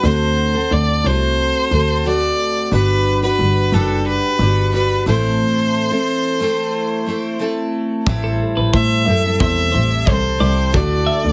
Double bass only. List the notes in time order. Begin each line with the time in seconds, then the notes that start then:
0.04 D2
0.71 D2
1.04 C2
1.71 D2
2.72 G1
3.39 G1
3.72 F#1
4.39 G1
5.06 A1
8.07 A1
8.57 A1
8.73 A2
9.06 F#2
9.40 E2
9.74 A1
10.07 C2
10.40 C2
10.74 D2
11.25 D2